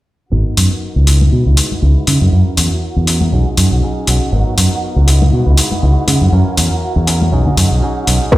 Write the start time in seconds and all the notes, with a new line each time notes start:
0.31 G#1 B3 D#4 F#4 A#4 F#5, tambourine
0.56 F#2 B3 D#4 F#4 A#4, open hi-hat
0.71 D#4 F#4 A#4
0.96 C#2
1.07 G#3 D#4 E4 B4, open hi-hat
1.21 D#4 E4 B4, tambourine, high conga
1.32 B2, tambourine
1.45 C#2 D#4 E4 B4
1.57 G#3 D#4 E4 B4, open hi-hat
1.71 D#4 E4 B4, muted fingered electric bass stroke, tambourine, high conga
1.82 C#2 G#3 D#4 E4 B4, tambourine
2.07 C#3 G#3 D#4 E4 B4, open hi-hat, tambourine, high conga
2.21 F#2, tambourine
2.32 F#2 C#4 E4 A#4, tambourine
2.57 E2 C#4 E4 A#4, open hi-hat
2.71 E4 A#4, tambourine
2.82 tambourine
2.96 E2
3.07 C#4 E4 A#4, open hi-hat
3.21 E4 A#4, tambourine, high conga
3.32 B1 F#3 C#4 D#4 G#4, tambourine
3.46 C#4 D#4 G#4
3.57 F#2 F#3 C#4 D#4 G#4, open hi-hat
3.71 B1 C#4 D#4 G#4, tambourine
3.82 F#3 C#4 D#4 G#4
4.07 B1 F#3 C#4 D#4 G#4, open hi-hat
4.32 G#1 F#3 B3 D#4 A#4, tambourine
4.57 F#2 F#3 B3 D#4 A#4, open hi-hat
4.71 B3 D#4 A#4
4.83 tambourine
4.96 C#2
5.07 G#3 D#4 E4 B4, open hi-hat
5.21 D#4 E4 B4, tambourine, high conga
5.32 B2, tambourine
5.46 C#2 D#4 E4 B4
5.57 G#3 D#4 E4 B4, open hi-hat
5.71 D#4 E4 B4, muted fingered electric bass stroke, tambourine, high conga
5.82 C#2 G#3 D#4 E4 B4, tambourine
6.07 C#3 G#3 D#4 E4 B4, open hi-hat, tambourine, high conga
6.21 F#2, tambourine
6.32 F#2 C#4 E4 A#4, tambourine
6.57 E2 C#4 E4 A#4, open hi-hat
6.71 E4 A#4, tambourine
6.83 tambourine
6.96 E2
7.07 C#4 E4 A#4, open hi-hat
7.20 E4 A#4, tambourine, high conga
7.32 B1 F#3 C#4 D#4 G#4, tambourine
7.45 C#4 D#4 G#4, low conga
7.56 F#2 F#3 C#4 D#4 G#4, open hi-hat, tambourine
7.70 B1 C#4 D#4 G#4, tambourine
7.82 F#3 C#4 D#4 G#4, tambourine
8.06 B1 F#3 C#4 D#4 G#4, open hi-hat
8.20 C#4 D#4 G#4, tambourine
8.32 G#1 G#3 B3 F#4 A#4, kick